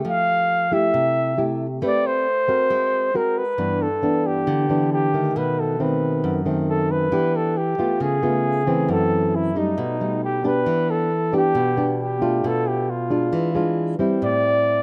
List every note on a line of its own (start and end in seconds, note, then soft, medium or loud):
0.00 0.67 A3 medium
0.00 0.68 G4 medium
0.05 0.91 F3 medium
0.05 0.75 F5 loud
0.71 1.34 A3 medium
0.71 1.34 E4 medium
0.71 1.34 G4 medium
0.71 1.60 E5 loud
0.94 1.80 C3 medium
1.38 1.66 A3 medium
1.38 1.66 E4 medium
1.38 1.66 G4 medium
1.82 2.68 A3 medium
1.82 2.26 C4 medium
1.82 2.26 G4 soft
1.82 2.26 B4 medium
1.82 2.08 D5 loud
2.06 3.18 C5 loud
2.48 3.11 C4 medium
2.48 3.11 F#4 medium
2.48 3.11 A#4 medium
2.70 3.56 G#3 medium
3.14 3.43 C4 medium
3.14 3.43 F#4 medium
3.14 3.43 A#4 medium
3.14 3.40 A#4 medium
3.38 3.84 B4 medium
3.58 4.44 G2 medium
3.58 3.86 E3 medium
3.58 3.87 B3 soft
3.58 3.87 D4 medium
3.82 4.28 A4 medium
4.02 4.65 E3 soft
4.02 4.65 B3 medium
4.02 4.65 D4 medium
4.27 4.92 G4 medium
4.47 5.33 D3 medium
4.69 5.10 E3 medium
4.69 5.10 B3 medium
4.69 5.10 D4 medium
4.93 5.39 G4 medium
5.14 5.76 D#3 medium
5.14 5.76 A3 medium
5.36 6.22 B2 medium
5.36 5.62 B4 medium
5.60 5.84 A4 medium
5.80 6.42 D#3 medium
5.80 6.42 A3 medium
5.80 6.43 C4 medium
5.80 6.42 B4 medium
6.24 7.10 F#2 medium
6.46 7.08 D#3 medium
6.46 7.09 A3 medium
6.46 7.09 C4 medium
6.70 6.93 A4 medium
6.92 7.38 B4 medium
7.12 7.78 E3 medium
7.12 7.56 B3 medium
7.12 7.56 D4 medium
7.12 7.56 G4 medium
7.36 7.59 A4 medium
7.57 8.03 G4 medium
7.78 8.19 A3 medium
7.78 8.19 B3 medium
7.78 8.19 F4 medium
8.00 8.87 C#3 medium
8.00 8.90 G#4 loud
8.22 8.63 A3 medium
8.22 8.64 B3 medium
8.22 8.64 F4 medium
8.67 9.52 E3 medium
8.67 9.52 A3 medium
8.67 9.52 C4 medium
8.89 9.75 F#2 medium
8.89 9.37 A4 loud
9.36 9.60 E4 medium
9.56 9.96 G3 medium
9.56 9.96 A3 medium
9.56 9.97 D#4 medium
9.56 10.23 D#4 medium
9.78 10.64 B2 medium
10.00 10.41 G3 medium
10.00 10.41 A3 medium
10.00 10.41 D#4 medium
10.25 10.48 G4 medium
10.44 11.09 B3 medium
10.44 11.09 D4 medium
10.44 11.09 G4 medium
10.44 10.92 B4 loud
10.66 11.52 E3 medium
10.91 11.34 A4 medium
11.33 11.73 B3 medium
11.33 11.73 D4 medium
11.33 11.74 G4 medium
11.33 11.97 G4 loud
11.55 12.41 B2 medium
11.77 12.18 B3 medium
11.77 12.18 D4 medium
11.77 12.18 G4 medium
12.02 12.49 G4 medium
12.21 13.06 A3 medium
12.21 13.06 D4 medium
12.21 13.06 F4 medium
12.44 13.30 B2 medium
12.44 12.70 A4 medium
12.68 12.92 G4 medium
12.91 13.77 F4 medium
13.10 13.51 G#3 medium
13.10 13.51 D4 medium
13.10 13.51 F4 medium
13.33 13.99 E3 medium
13.55 13.95 G#3 medium
13.55 13.95 D4 medium
13.55 13.96 F4 medium
13.99 14.83 G3 medium
13.99 14.83 C4 medium
13.99 14.83 E4 medium
14.22 14.83 A2 medium
14.22 14.83 D5 loud